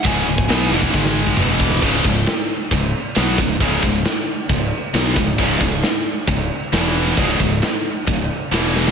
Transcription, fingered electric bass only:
\new Staff \with { instrumentName = "Fingered electric bass" } { \clef bass \time 4/4 \key cis \minor \tempo 4 = 135 cis,,8 cis,,8 b,,8 e,,8 gis,,4 e,,4 | cis,,8 cis,,8 r4 cis,,8 r8 b,,8 cis,,8 | cis,,8 cis,,8 r4 cis,,8 r8 b,,8 cis,,8 | cis,,8 cis,,8 r4 cis,,8 r8 e,,4 |
cis,,8 cis,,8 r4 cis,,8 r8 e,,4 | }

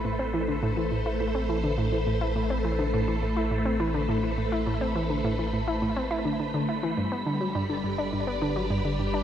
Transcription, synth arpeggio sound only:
\new Staff \with { instrumentName = "Synth arpeggio sound" } { \clef bass \time 4/4 \key a \minor \tempo 4 = 104 a,16 c'16 e16 d16 a,16 e16 a,16 e'16 a,16 c'16 e16 d16 a,16 e16 a,16 e'16 | a,16 c'16 e16 d16 a,16 e16 a,16 e'16 a,16 c'16 e16 d16 a,16 e16 a,16 e'16 | a,16 c'16 e16 d16 a,16 e16 a,16 e'16 a,16 c'16 e'16 d16 d16 d16 e'16 e16 | g,16 b16 d16 fis16 g,16 d16 g,16 d'16 g,16 b16 d16 fis16 g,16 d16 g,16 d'16 | }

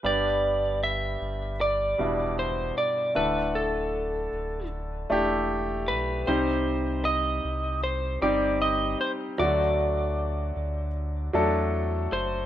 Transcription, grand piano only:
<<
  \new Staff \with { instrumentName = "Grand piano" } { \time 4/4 \key g \major \tempo 4 = 77 <g b d' g'>2 r8 <b, g d' e'>4. | <a d' e' a'>2 r8 <a d' e' g'>4. | <g c' ees' g'>2 r8 <g c' ees' g'>4. | <fis a d' fis'>2 r8 <fis a d' a'>4. | }
  \new Staff \with { instrumentName = "Grand piano" } { \clef bass \time 4/4 \key g \major g,4. r2 r8 | d4. r2 r8 | c4. r2 r8 | d4. r2 r8 | }
>>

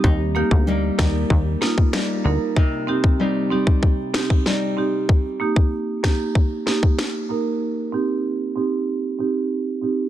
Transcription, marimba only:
\new Staff \with { instrumentName = "Marimba" } { \time 4/4 \key ees \major \tempo 4 = 95 r8 <bes ees' g'>8 r8 <bes ees' bes'>8 r8 <bes ees' f'>8 r8 <bes ees' bes'>8 | r8 <c' ees' g'>8 r8 <c' ees' g'>8 r8 <c' ees' g'>8 r8 <c' ees' g'>8 | r8 <bes ees' g'>8 r8 <bes ees' g'>8 r8 <bes ees' g'>8 r8 <bes ees' bes'>8 | r8 <c' ees' g'>8 r8 <c' ees' g'>8 r8 <c' ees' g'>8 r8 <c' ees' g'>8 | }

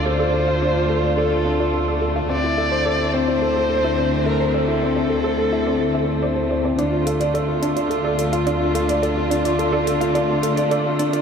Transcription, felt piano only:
\new Staff \with { instrumentName = "Felt piano" } { \time 4/4 \key d \minor \tempo 4 = 107 a'16 d''16 a'16 f'16 d'16 f'16 a'16 d''16 a'16 f'16 d'16 f'16 a'16 d''16 a'16 f'16 | c'16 e'16 a'16 c''16 a'16 e'16 c'16 e'16 a'16 c''16 a'16 e'16 c'16 e'16 a'16 c''16 | a'16 e'16 c'16 e'16 a'16 c''16 a'16 e'16 c'16 e'16 c'16 c'16 c''16 c''16 c''16 c'16 | d'16 f'16 a'16 d''16 a'16 f'16 d'16 f'16 a'16 d''16 a'16 f'16 d'16 f'16 a'16 d''16 |
a'16 f'16 d'16 f'16 a'16 d''16 a'16 f'16 d'16 f'16 a'16 d''16 a'16 f'16 d'16 f'16 | }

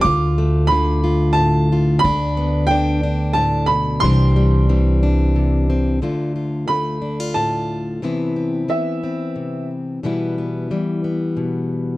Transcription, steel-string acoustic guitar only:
\new Staff \with { instrumentName = "Steel-string acoustic guitar" } { \time 3/4 \key d \dorian \tempo 4 = 90 << { f'8 a8 f'8 f'4 f'8 | d'8 b8 d'8 d'4. | <e g c' d'>8 g8 c'8 d'4 c'8 | <d a f'>8 f'8 a8 d'16 f'4~ f'16 |
<e b c' e'>8 c'8 b8 c'4. | <e g b e'>8 b8 g8 b4. | } \\ { d,4 d4 a,4 | d,4 d4 a,8 b,8 | c4 e4 c4 | d,4 d4 a,4 |
c4 e4 c4 | b,4 e4 b,4 | } >> }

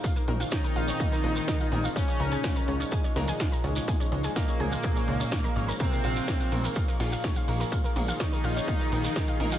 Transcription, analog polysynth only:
\new Staff \with { instrumentName = "Analog polysynth" } { \clef bass \time 4/4 \key bes \minor \tempo 4 = 125 r4 <ees ees'>2. | <des des'>2 r2 | r4 <bes, bes>2. | <c c'>2 r2 |
r4 <ees ees'>2. | }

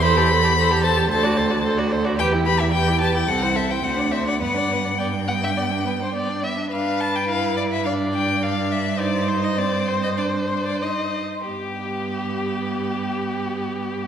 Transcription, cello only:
\new Staff \with { instrumentName = "Cello" } { \clef bass \time 4/4 \key g \major \tempo 4 = 105 e,2 d,2 | e,2 c,4 d,4 | g,2.~ g,8 r8 | g,1~ |
g,2.~ g,8 r8 | g,1 | }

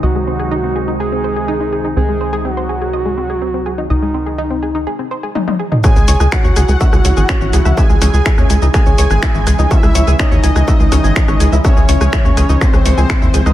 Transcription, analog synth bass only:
\new Staff \with { instrumentName = "Analog synth bass" } { \clef bass \time 4/4 \key cis \minor \tempo 4 = 124 cis,1 | cis,1 | cis,2 r2 | r16 cis,16 cis,16 cis,16 r16 dis,16 cis,16 cis,16 r16 cis,16 cis,16 gis,,16 r16 gis,,16 cis,16 cis,16 |
r16 cis,16 cis,16 cis,16 r16 dis,16 cis,16 cis,16 r16 cis,16 cis,16 gis,,16 r16 gis,,16 cis,16 cis,16 | r16 cis,16 cis,16 cis,16 r16 dis,16 cis,16 cis,16 r16 cis,16 cis,16 gis,,16 r16 gis,,16 cis,16 cis,16 | r16 cis,16 cis,16 cis,16 r16 dis,16 cis,16 cis,16 r16 cis,16 cis,16 cis,16 r16 dis,16 cis,16 cis,16 | }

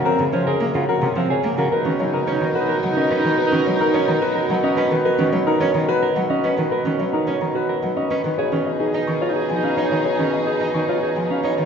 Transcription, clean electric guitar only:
\new Staff \with { instrumentName = "Clean electric guitar" } { \time 3/4 \key ges \lydian \tempo 4 = 108 c'16 r16 des'16 bes'16 r16 f'16 ges'16 r16 c'16 aes'16 r16 ges'16 | \key b \lydian ais'16 cis'16 r16 dis'16 cis''16 r16 fis'16 ais'16 r16 cis'16 b'16 r16 | ais'16 cis'16 r16 dis'16 cis''16 r16 fis'16 ais'16 r16 cis'16 b'16 r16 | ais'16 cis'16 r16 dis'16 cis''16 r16 fis'16 ais'16 r16 cis'16 b'16 r16 |
ais'16 cis'16 r16 dis'16 cis''16 r16 fis'16 ais'16 r16 cis'16 b'16 r16 | gis'16 cis'16 r16 dis'16 dis''16 r16 eis'16 gis'16 r16 cis'16 cis''16 r16 | gis'16 cis'16 r16 dis'16 dis''16 r16 eis'16 gis'16 r16 cis'16 cis''16 r16 | }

